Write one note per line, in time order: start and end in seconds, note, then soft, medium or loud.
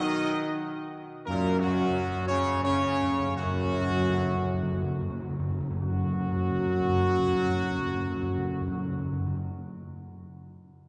0.00 0.59 D#3 loud
0.00 0.58 D#4 loud
0.00 0.59 D#5 loud
1.26 1.35 F#2 medium
1.26 1.84 F#2 loud
1.26 1.60 A#2 loud
1.26 1.58 A#3 loud
1.26 1.58 A#4 loud
1.44 1.50 F#2 medium
1.51 1.58 F#2 medium
1.59 2.30 F#2 loud
1.59 2.26 F#3 loud
1.59 2.29 F#4 loud
1.67 1.74 F#2 medium
1.75 1.82 F#2 medium
1.90 1.97 F#2 medium
1.99 2.05 F#2 medium
2.06 2.14 F#2 medium
2.15 2.20 F#2 medium
2.21 2.29 F#2 medium
2.28 2.37 F#2 medium
2.28 2.62 C#3 loud
2.28 2.62 C#4 loud
2.28 2.62 C#5 loud
2.38 2.45 F#2 medium
2.54 2.60 F#2 medium
2.61 2.68 F#2 medium
2.61 3.34 C#3 loud
2.61 3.34 C#4 loud
2.61 3.34 C#5 loud
2.69 2.77 F#2 medium
2.86 2.94 F#2 medium
2.95 3.01 F#2 medium
3.02 3.09 F#2 medium
3.10 3.18 F#2 medium
3.19 3.26 F#2 medium
3.27 3.35 F#2 medium
3.36 3.45 F#2 medium
3.36 5.35 F#2 loud
3.36 4.03 F#2 loud
3.36 5.39 F#3 loud
3.36 5.35 F#4 loud
3.46 3.53 F#2 medium
3.55 3.63 F#2 medium
3.64 3.71 F#2 medium
3.81 3.88 F#2 loud
3.89 3.98 F#2 loud
4.00 4.07 F#2 loud
4.08 4.16 F#2 loud
4.17 4.25 F#2 loud
4.26 4.34 F#2 loud
4.35 4.43 F#2 loud
4.45 4.52 F#2 loud
4.53 4.61 F#2 loud
4.62 4.71 F#2 loud
4.72 4.81 F#2 loud
4.82 4.90 F#2 loud
4.91 5.00 F#2 loud
5.01 5.09 F#2 loud
5.10 5.19 F#2 loud
5.20 5.29 F#2 loud
5.30 5.39 F#2 loud
5.40 5.48 F#2 loud
5.49 5.59 F#2 loud
5.60 5.69 F#2 loud
5.71 5.80 F#2 loud
5.81 5.90 F#2 loud
5.81 9.40 F#2 loud
5.81 9.40 F#3 loud
5.81 9.38 F#4 loud
5.81 9.40 F#4 loud
5.90 5.97 F#2 medium
5.97 6.05 F#2 medium
6.05 6.13 F#2 loud
6.13 6.20 F#2 loud
6.20 6.28 F#2 medium
6.28 6.35 F#2 loud
6.35 6.43 F#2 medium
6.43 6.51 F#2 loud
6.51 6.58 F#2 medium
6.58 6.66 F#2 medium
6.66 6.74 F#2 loud
6.74 6.81 F#2 loud
6.81 6.88 F#2 medium
6.88 6.96 F#2 medium
6.96 7.03 F#2 medium
7.03 7.11 F#2 loud
7.11 7.18 F#2 medium
7.19 7.26 F#2 medium
7.26 7.34 F#2 medium
7.34 7.41 F#2 loud
7.41 7.49 F#2 medium
7.49 7.56 F#2 loud
7.56 7.64 F#2 medium
7.64 7.71 F#2 medium
7.71 7.78 F#2 medium
7.78 7.85 F#2 loud
7.85 7.92 F#2 loud
7.92 8.00 F#2 loud
8.00 8.07 F#2 loud
8.07 8.14 F#2 loud
8.14 8.22 F#2 loud
8.22 8.30 F#2 loud
8.30 8.37 F#2 medium
8.38 8.45 F#2 loud
8.45 8.53 F#2 medium
8.53 8.60 F#2 loud
8.61 8.68 F#2 medium
8.68 8.75 F#2 loud
8.76 8.83 F#2 medium
8.84 8.91 F#2 loud
8.91 8.98 F#2 medium
8.98 9.05 F#2 loud
9.05 9.12 F#2 medium
9.12 9.19 F#2 loud
9.19 9.27 F#2 medium
9.27 9.34 F#2 loud
9.34 9.42 F#2 medium